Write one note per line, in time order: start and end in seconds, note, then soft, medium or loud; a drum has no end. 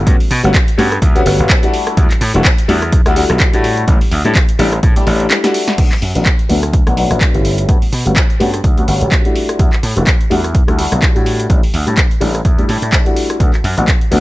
0.06 0.17 G2 loud
0.06 0.13 G3 medium
0.06 0.13 A3 medium
0.06 0.14 B3 medium
0.06 0.14 C#4 medium
0.06 0.14 F#4 loud
0.06 kick loud
0.06 closed hi-hat medium
0.20 muted slap bass stroke soft
0.20 open hi-hat medium
0.31 0.41 B2 medium
0.31 open hi-hat loud
0.43 0.52 G1 medium
0.43 0.49 G3 medium
0.43 0.49 A3 medium
0.43 0.49 B3 medium
0.43 0.49 C#4 medium
0.43 0.49 F#4 medium
0.43 closed hi-hat soft
0.54 kick loud
0.54 clap loud
0.54 closed hi-hat medium
0.68 closed hi-hat medium
0.78 0.97 G2 medium
0.78 0.85 G3 loud
0.78 0.85 A3 medium
0.78 0.85 B3 medium
0.78 0.85 C#4 loud
0.78 0.85 F#4 loud
0.78 open hi-hat loud
0.92 cross-stick medium
0.92 closed hi-hat soft
1.02 1.21 D2 loud
1.02 kick loud
1.02 closed hi-hat medium
1.15 1.21 G3 medium
1.15 1.21 A3 medium
1.15 1.21 B3 medium
1.15 1.21 C#4 medium
1.15 1.21 F#4 loud
1.15 closed hi-hat medium
1.25 1.36 G1 medium
1.25 1.60 G3 medium
1.25 1.60 A3 medium
1.25 1.60 B3 medium
1.25 1.60 C#4 medium
1.25 1.60 F#4 medium
1.25 open hi-hat loud
1.39 1.47 G1 medium
1.39 closed hi-hat soft
1.50 kick loud
1.50 clap loud
1.50 closed hi-hat medium
1.63 1.95 G3 medium
1.63 1.95 A3 medium
1.63 1.95 D4 medium
1.63 1.95 E4 medium
1.63 1.95 F#4 medium
1.63 closed hi-hat medium
1.74 open hi-hat loud
1.87 cross-stick medium
1.87 closed hi-hat soft
1.97 2.07 E2 loud
1.97 2.04 G3 medium
1.97 2.04 A3 medium
1.97 2.04 D4 medium
1.97 2.04 E4 medium
1.97 2.04 F#4 loud
1.97 kick loud
1.97 closed hi-hat medium
2.11 clap soft
2.11 closed hi-hat medium
2.21 2.31 A2 loud
2.21 open hi-hat loud
2.34 2.42 E1 medium
2.34 2.40 G3 medium
2.34 2.40 A3 medium
2.34 2.40 D4 medium
2.34 2.40 E4 medium
2.34 2.40 F#4 medium
2.34 closed hi-hat soft
2.45 kick loud
2.45 clap loud
2.45 closed hi-hat medium
2.58 closed hi-hat medium
2.68 3.01 E2 medium
2.68 2.75 G3 loud
2.68 2.75 A3 medium
2.68 2.76 D4 medium
2.68 2.76 E4 medium
2.68 2.76 F#4 loud
2.68 open hi-hat loud
2.82 cross-stick medium
2.82 closed hi-hat soft
2.92 kick loud
2.92 closed hi-hat medium
3.06 3.23 D2 medium
3.06 3.11 G3 medium
3.06 3.11 A3 medium
3.06 3.11 D4 medium
3.06 3.11 E4 medium
3.06 3.12 F#4 loud
3.06 cross-stick medium
3.06 closed hi-hat medium
3.16 3.50 G3 medium
3.16 3.50 A3 medium
3.16 3.50 D4 medium
3.16 3.50 E4 medium
3.16 3.50 F#4 medium
3.16 open hi-hat loud
3.30 3.38 B1 medium
3.30 cross-stick medium
3.30 closed hi-hat soft
3.40 kick loud
3.40 clap loud
3.40 closed hi-hat medium
3.53 3.84 A2 medium
3.53 3.85 G3 medium
3.53 3.85 A3 medium
3.53 3.85 D4 medium
3.53 3.85 E4 medium
3.53 3.85 F#4 medium
3.53 closed hi-hat medium
3.64 open hi-hat loud
3.77 closed hi-hat soft
3.87 3.98 A1 loud
3.87 3.94 G3 medium
3.87 3.94 A3 medium
3.87 3.95 D4 medium
3.87 3.95 E4 medium
3.87 3.95 G4 loud
3.87 kick loud
3.87 closed hi-hat medium
4.01 muted slap bass stroke soft
4.01 open hi-hat medium
4.11 4.22 D2 loud
4.11 open hi-hat loud
4.25 4.33 A2 medium
4.25 4.30 G3 medium
4.25 4.30 A3 medium
4.25 4.30 D4 medium
4.25 4.30 E4 medium
4.25 4.30 G4 medium
4.25 closed hi-hat soft
4.35 kick loud
4.35 clap loud
4.35 closed hi-hat medium
4.49 closed hi-hat medium
4.59 4.78 A1 medium
4.59 4.66 G3 loud
4.59 4.66 A3 medium
4.59 4.66 D4 medium
4.59 4.66 E4 medium
4.59 4.66 G4 loud
4.59 open hi-hat loud
4.73 cross-stick medium
4.73 closed hi-hat soft
4.83 kick loud
4.83 closed hi-hat medium
4.96 5.01 G3 medium
4.96 5.02 A3 medium
4.96 5.02 D4 medium
4.96 5.02 E4 medium
4.96 5.02 G4 loud
4.96 muted slap bass stroke soft
4.96 closed hi-hat medium
5.06 5.26 A1 loud
5.06 5.41 G3 medium
5.06 5.41 A3 medium
5.06 5.41 D4 medium
5.06 5.41 E4 medium
5.06 5.41 G4 medium
5.06 open hi-hat loud
5.20 closed hi-hat soft
5.31 snare medium
5.31 clap loud
5.31 closed hi-hat medium
5.44 5.76 G3 medium
5.44 5.76 A3 medium
5.44 5.76 D4 medium
5.44 5.76 E4 medium
5.44 5.76 F#4 medium
5.44 snare medium
5.44 closed hi-hat medium
5.54 open hi-hat loud
5.68 snare medium
5.68 closed hi-hat soft
5.78 5.88 D2 medium
5.78 5.85 F#3 medium
5.78 5.85 A3 medium
5.78 5.85 B3 medium
5.78 5.85 D4 medium
5.78 5.85 F#4 medium
5.78 kick loud
5.78 closed hi-hat medium
5.78 crash medium
5.91 clap soft
5.91 closed hi-hat soft
6.02 6.12 F#2 medium
6.02 open hi-hat loud
6.15 6.23 A1 medium
6.15 6.20 F#3 medium
6.15 6.21 A3 medium
6.15 6.21 B3 medium
6.15 6.21 D4 medium
6.15 6.21 F#4 medium
6.15 closed hi-hat medium
6.26 kick loud
6.26 clap loud
6.26 closed hi-hat medium
6.39 closed hi-hat soft
6.49 6.82 D2 medium
6.49 6.56 F#3 medium
6.49 6.56 A3 medium
6.49 6.56 B3 medium
6.49 6.56 D4 medium
6.49 6.57 F#4 loud
6.49 open hi-hat loud
6.63 cross-stick medium
6.63 closed hi-hat medium
6.73 kick loud
6.73 closed hi-hat medium
6.86 7.04 B1 medium
6.86 6.92 F#3 medium
6.86 6.92 A3 medium
6.86 6.92 B3 medium
6.86 6.92 D4 medium
6.86 6.92 F#4 medium
6.86 cross-stick medium
6.86 closed hi-hat soft
6.97 7.31 F#3 medium
6.97 7.31 A3 medium
6.97 7.31 B3 medium
6.97 7.31 D4 medium
6.97 7.31 F#4 medium
6.97 open hi-hat loud
7.11 7.19 A1 medium
7.11 cross-stick medium
7.11 closed hi-hat medium
7.21 kick loud
7.21 clap loud
7.21 closed hi-hat medium
7.34 7.65 G1 medium
7.34 7.66 G3 medium
7.34 7.66 A3 medium
7.34 7.66 B3 medium
7.34 7.66 C#4 medium
7.34 7.66 E4 medium
7.34 closed hi-hat soft
7.45 open hi-hat loud
7.58 closed hi-hat soft
7.68 7.79 G2 medium
7.68 7.75 G3 medium
7.68 7.75 A3 medium
7.68 7.76 B3 medium
7.68 7.76 C#4 medium
7.68 7.76 F#4 medium
7.68 kick loud
7.68 closed hi-hat medium
7.82 muted slap bass stroke soft
7.82 open hi-hat medium
7.93 8.03 B2 medium
7.93 open hi-hat loud
8.05 8.14 G1 medium
8.05 8.11 G3 medium
8.05 8.11 A3 medium
8.05 8.11 B3 medium
8.05 8.11 C#4 medium
8.05 8.11 F#4 medium
8.05 closed hi-hat medium
8.16 kick loud
8.16 clap loud
8.16 closed hi-hat medium
8.30 closed hi-hat soft
8.40 8.59 G2 medium
8.40 8.47 G3 loud
8.40 8.47 A3 medium
8.40 8.47 B3 medium
8.40 8.47 C#4 medium
8.40 8.47 F#4 loud
8.40 open hi-hat loud
8.54 cross-stick medium
8.54 closed hi-hat medium
8.64 8.83 D2 loud
8.64 kick loud
8.64 closed hi-hat medium
8.77 8.82 G3 medium
8.77 8.83 A3 medium
8.77 8.83 B3 medium
8.77 8.83 C#4 medium
8.77 8.83 F#4 medium
8.77 closed hi-hat soft
8.87 8.98 G1 medium
8.87 9.22 G3 medium
8.87 9.22 A3 medium
8.87 9.22 B3 medium
8.87 9.22 C#4 medium
8.87 9.22 F#4 medium
8.87 open hi-hat loud
9.01 9.09 G1 medium
9.01 closed hi-hat soft
9.12 kick loud
9.12 clap loud
9.12 closed hi-hat medium
9.25 9.57 G3 medium
9.25 9.57 A3 medium
9.25 9.57 D4 medium
9.25 9.57 E4 medium
9.25 9.57 F#4 medium
9.25 closed hi-hat soft
9.36 open hi-hat loud
9.49 cross-stick medium
9.49 closed hi-hat medium
9.59 9.69 E2 loud
9.59 9.66 G3 medium
9.59 9.66 A3 medium
9.59 9.66 D4 medium
9.59 9.66 E4 medium
9.59 9.66 F#4 medium
9.59 kick loud
9.59 closed hi-hat medium
9.73 clap soft
9.73 closed hi-hat soft
9.83 9.93 A2 loud
9.83 open hi-hat loud
9.96 10.04 E1 medium
9.96 10.01 G3 medium
9.96 10.02 A3 medium
9.96 10.02 D4 medium
9.96 10.02 E4 medium
9.96 10.02 F#4 medium
9.96 closed hi-hat soft
10.07 kick loud
10.07 clap loud
10.07 closed hi-hat medium
10.21 closed hi-hat soft
10.30 10.63 E2 medium
10.30 10.37 G3 loud
10.30 10.37 A3 medium
10.30 10.37 D4 medium
10.30 10.38 E4 medium
10.30 10.38 F#4 loud
10.30 open hi-hat loud
10.44 cross-stick medium
10.44 closed hi-hat medium
10.55 kick loud
10.55 closed hi-hat medium
10.67 10.85 D2 medium
10.67 10.73 G3 medium
10.67 10.73 A3 medium
10.67 10.73 D4 medium
10.67 10.73 E4 medium
10.67 10.73 F#4 medium
10.67 cross-stick medium
10.67 closed hi-hat soft
10.78 11.12 G3 medium
10.78 11.12 A3 medium
10.78 11.12 D4 medium
10.78 11.12 E4 medium
10.78 11.13 F#4 medium
10.78 open hi-hat loud
10.92 11.00 B1 medium
10.92 cross-stick medium
10.92 closed hi-hat soft
11.02 kick loud
11.02 clap loud
11.02 closed hi-hat medium
11.15 11.46 A2 medium
11.15 11.47 G3 medium
11.15 11.47 A3 medium
11.15 11.47 D4 medium
11.15 11.47 E4 medium
11.15 11.47 F#4 medium
11.15 closed hi-hat soft
11.26 open hi-hat loud
11.40 closed hi-hat medium
11.49 11.60 A1 loud
11.49 11.56 G3 medium
11.49 11.56 A3 medium
11.49 11.57 D4 medium
11.49 11.57 E4 medium
11.49 11.57 G4 medium
11.49 kick loud
11.49 closed hi-hat medium
11.63 muted slap bass stroke soft
11.63 open hi-hat medium
11.74 11.84 D2 medium
11.74 open hi-hat loud
11.86 11.95 A2 medium
11.86 11.92 G3 medium
11.86 11.92 A3 medium
11.86 11.92 D4 medium
11.86 11.92 E4 medium
11.86 11.92 G4 medium
11.86 closed hi-hat soft
11.97 kick loud
11.97 clap loud
11.97 closed hi-hat medium
12.11 closed hi-hat soft
12.21 12.40 A1 medium
12.21 12.28 G3 medium
12.21 12.28 A3 medium
12.21 12.28 D4 medium
12.21 12.28 E4 medium
12.21 12.28 G4 loud
12.21 open hi-hat loud
12.35 cross-stick medium
12.35 closed hi-hat soft
12.45 12.64 E2 loud
12.45 kick loud
12.45 closed hi-hat medium
12.58 12.63 G3 medium
12.58 12.63 A3 medium
12.58 12.64 D4 medium
12.58 12.64 E4 medium
12.58 12.64 G4 medium
12.58 closed hi-hat soft
12.68 12.79 A2 medium
12.68 13.02 G3 medium
12.68 13.03 A3 medium
12.68 13.03 D4 medium
12.68 13.03 E4 medium
12.68 13.03 G4 medium
12.68 open hi-hat loud
12.82 12.90 A2 medium
12.82 closed hi-hat soft
12.93 kick loud
12.93 clap loud
12.93 closed hi-hat medium
13.05 13.37 G3 medium
13.05 13.37 A3 medium
13.05 13.38 D4 medium
13.05 13.38 E4 medium
13.05 13.38 F#4 medium
13.05 closed hi-hat soft
13.16 open hi-hat loud
13.30 cross-stick medium
13.30 closed hi-hat soft
13.40 13.50 D2 loud
13.40 13.47 F#3 medium
13.40 13.47 A3 medium
13.40 13.47 B3 medium
13.40 13.47 D4 medium
13.40 13.47 F#4 medium
13.40 kick loud
13.40 closed hi-hat medium
13.54 clap soft
13.54 closed hi-hat soft
13.64 13.74 F#2 medium
13.64 open hi-hat loud
13.77 13.85 A1 medium
13.77 13.82 F#3 medium
13.77 13.83 A3 medium
13.77 13.83 B3 medium
13.77 13.83 D4 medium
13.77 13.83 F#4 medium
13.77 closed hi-hat medium
13.88 kick loud
13.88 clap loud
13.88 closed hi-hat medium
14.01 closed hi-hat soft
14.11 14.20 D2 medium
14.11 14.18 F#3 loud
14.11 14.18 A3 medium
14.11 14.18 B3 medium
14.11 14.18 D4 medium
14.11 14.19 F#4 loud
14.11 open hi-hat loud